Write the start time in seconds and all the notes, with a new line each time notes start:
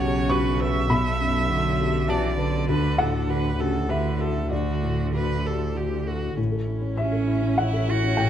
Already playing: B1 F#2 C#3 F#4 F#5
0.00 G4 C#5
0.29 F#4 B4 C#6
0.60 B4 E5
0.90 B1 B2 B5
1.20 F#2
1.49 D3 F#4
1.80 G4
2.08 E3 F#4 D5 A5
2.38 D3 B4
2.69 D2 B4
2.98 A2 A4 F#5
3.29 D3 F#4 B4
3.58 C#3 G4 A4
3.89 D3 F#4 B4 E5
4.20 A4
4.51 D2 D3 F#4 D5
4.82 A2
5.13 F#4 B4
5.45 G4 A4
5.75 F#4 G4
6.06 F#4 A4
6.37 A1 A2 C#4
6.52 A4
6.67 E4
6.82 C#4
6.97 C#4 E5
7.12 A4
7.27 E4
7.42 C#4
7.57 E3 E4 F#5
7.73 A4
7.88 E4 F#4
8.03 C#4
8.17 A2 G5